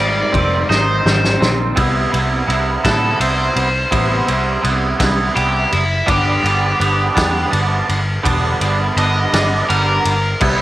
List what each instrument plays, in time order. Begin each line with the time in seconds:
Already playing: picked electric bass G#1, clean electric guitar G#2 D#3 G3 D#4
0.00 clean electric guitar C4, overdriven electric guitar D5
0.32 picked electric bass F1, clean electric guitar D#3 G3 C4 D#4, kick, ride
0.70 picked electric bass G#1, clean electric guitar G3 C4 D#4, overdriven electric guitar C5, snare
1.03 picked electric bass G#1, clean electric guitar D#3 G3 C4 D#4, snare
1.25 snare
1.40 picked electric bass A#1, clean electric guitar G3 C4 D#4, snare
1.75 picked electric bass C2, clean electric guitar C3 G3 B3 E4, kick, ride
2.12 picked electric bass C2, clean electric guitar C3 G3 B3 E4, ride
2.47 picked electric bass C2, clean electric guitar C3 G3 B3 E4, ride
2.83 picked electric bass A2, clean electric guitar C3 G3 B3 E4, overdriven electric guitar A4, kick, snare, ride
3.19 picked electric bass C2, clean electric guitar C3 G3 B3 E4, overdriven electric guitar C5, ride
3.56 picked electric bass C2, clean electric guitar C3 G3, ride
3.91 picked electric bass A1, clean electric guitar C3 G3 B3 E4, kick, ride
4.27 picked electric bass C2, clean electric guitar C3 G3 B3 E4, ride
4.62 picked electric bass C2, clean electric guitar C3 G3 B3 E4, ride
4.99 picked electric bass C2, clean electric guitar C3 G3 B3 E4, kick, snare, ride
5.35 picked electric bass C2, clean electric guitar C3 G3 B3 E4, overdriven electric guitar G4, ride
5.72 picked electric bass F#1, clean electric guitar C3 G3, overdriven electric guitar E4, ride
6.06 picked electric bass G1, clean electric guitar G2 D3 G3 B3 D4, overdriven electric guitar G4, kick, ride
6.42 picked electric bass G1, clean electric guitar G2 D3 G3 B3 D4, ride
6.79 picked electric bass G1, clean electric guitar G2 D3 G3 B3 D4, ride
7.14 picked electric bass E2, clean electric guitar G2 D3 G3 B3 D4, kick, snare, ride
7.50 picked electric bass G1, clean electric guitar G2 D3 G3 B3 D4, ride
7.88 picked electric bass G1, clean electric guitar G2 D3, ride
8.23 picked electric bass E1, clean electric guitar G2 D3 G3 B3 D4, kick, ride
8.61 picked electric bass G1, clean electric guitar G2 D3 G3 B3 D4, ride
8.97 picked electric bass G1, clean electric guitar G2 D3 G3 B3 D4, overdriven electric guitar D#5, ride
9.33 picked electric bass G1, clean electric guitar G2 D3 G3 B3 D4, snare, ride
9.68 picked electric bass G1, clean electric guitar G2 D3 G3 B3 D4, overdriven electric guitar A#4, ride
10.05 picked electric bass G1, clean electric guitar G2 D3, ride
10.41 picked electric bass C2, clean electric guitar C3 G3 B3 E4, kick, crash